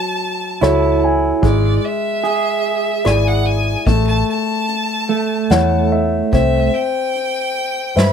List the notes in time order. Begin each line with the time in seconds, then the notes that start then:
Already playing: F#3 A5
0.61 C#2 E4 F#4 A4 C#5, cross-stick, closed hi-hat
1.04 G#5
1.42 G#1 G#3 D5, kick, closed hi-hat
1.85 E5
2.24 G#4, closed hi-hat
3.04 G#1 E4 G#4 D5 G#5, cross-stick, closed hi-hat
3.28 F#5
3.45 G#5
3.87 A1 A3 A5, kick, closed hi-hat
4.07 A5
4.30 A5
4.68 closed hi-hat
5.09 A3
5.50 E2 E4 A4 C#5 F#5, snare, closed hi-hat
5.92 E5
6.32 C2 C4 E5, kick, closed hi-hat
6.74 G5
7.15 closed hi-hat
7.96 G2 B4 C5 E5 B5, snare, closed hi-hat